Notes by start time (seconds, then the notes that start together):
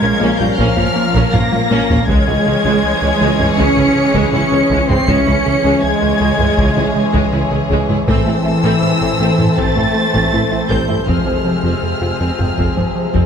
Already playing: F3 G#3 C#4 A#4 F5 G#6
0.02 A#1 A#2 C#4 A#4
0.20 A#1 A#2 A#3 C#4
0.39 A#1 A#2 G3 C#4 F4 A#4 G6, taiko low-mid
0.58 A#1 A#2 F3 A#3 C#4 F6, taiko
0.77 A#1 A#3 C#4 F4, taiko low-mid
0.96 A#3
1.14 A#1 A#2 A#3 C#4, taiko
1.33 A#1 A#3 C#4 F4 A#6, taiko low-mid
1.52 A#1 A#3 C#4 F4, taiko high
1.71 A#1 A#2 A#3 C#4, taiko high
1.90 A#1 A#3 C#4 F4, taiko low
2.08 C#2 C#3 E3 G#3 C#4 G#4 C#5 G#6, taiko
2.27 C#2 C#3 G#3 E4
2.46 C#2 C#3 G#3 C#4
2.64 C#2 C#3 G#3
2.83 C#2
3.02 C#2 G#3 C#4
3.21 C#2 C#3 G#3
3.39 C#2 G#3 C#4 E4, taiko low-mid
3.58 C#2 C#3 G#3 C#4 C#7, taiko
3.77 C#2 C#3 G#3 E4, taiko low-mid
3.96 C#3
4.14 C#2 C#3 G#3, taiko
4.33 C#2 C#3 G#3 C#4 E4 C#7
4.52 C#2 C#3 G#3 C#4
4.70 C#2 C#3 G#3, taiko
4.88 C#2 C#3 G#3 C4 E4 C7, taiko low-mid
5.07 C#2 C#3 E3 G#3 C#4 G#4 C#5 C#7, taiko
5.26 C#2 C#3 G#3 E4
5.45 C#2 C#3 G#3 C#4
5.64 C#2 C#3 G#3
5.82 C#2 G#3 G#6
6.02 C#2 G#3 C#4
6.19 C#2 C#3 G#3
6.38 C#2 G#3 C#4 E4, taiko low-mid
6.57 C#2 C#3 G#3, taiko
6.76 C#2 C#3 G#3 E4, taiko low-mid
6.95 C#3
7.14 C#2 C#3 G#3, taiko
7.33 C#2 C#3 G#3 E4
7.51 C#2 C#3 G#3 C#4
7.70 C#2 C#3 G#3, taiko
7.89 C#2 C#3 G#3 E4, taiko low-mid
8.06 A1 A2 E3 A3 C4 A4 C5 E6, taiko
8.26 A1 A3 C4 E4
8.45 A1 A3 C4 E4
8.64 A1 A2 A3 C4
8.83 A2
9.01 A1 A2 C4 A4
9.20 A1 A2 A3 C4
9.38 A1 A2 C4 E4 A4, taiko low-mid
9.58 A1 A2 A3 C4 A6, taiko
9.76 A1 A3 C4 E4, taiko low-mid
9.95 A3
10.14 A1 A2 A3 C4, taiko
10.32 A1 A3 C4 E4
10.51 A1 A3 C4 E4
10.69 A1 A2 G3 A3 C4 G6, taiko
10.89 A1 A3 C4 E4, taiko low-mid
11.07 F1 F2 C3 F3 G#3 C4 G#4 F6, taiko
11.26 F1 F3 C4 G#4
11.45 F1 F3 C4 F4
11.63 F1 F2 F3 C4
11.83 F2
12.01 F1 F2 C4 F4, taiko rim
12.20 F1 F2 F3 C4
12.39 F1 F2 C4 F4 G#4, taiko low-mid
12.58 F1 F2 F3 C4, taiko
12.77 F1 F3 C4 G#4, taiko low-mid
12.95 F3
13.14 F1 F2 F3 C4, taiko